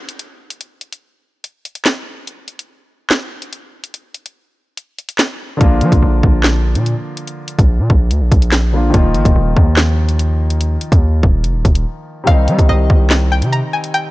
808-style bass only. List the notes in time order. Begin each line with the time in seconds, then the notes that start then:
5.61 A#1
5.82 F3
5.92 A#1
6.02 A#1
6.23 A#1
6.75 A#2
7.59 A#1
7.79 A#2
7.90 A#1
8.11 D2
8.21 A#1
8.32 A#1
8.94 D#1
9.15 G1
9.25 D#1
9.36 D#1
9.57 D#2
10.92 D#2
11.23 D#1
11.44 F1
11.54 D#1
11.65 D#1
12.27 C2
12.48 G3
12.59 C2
12.69 C2
12.90 C2
13.42 C3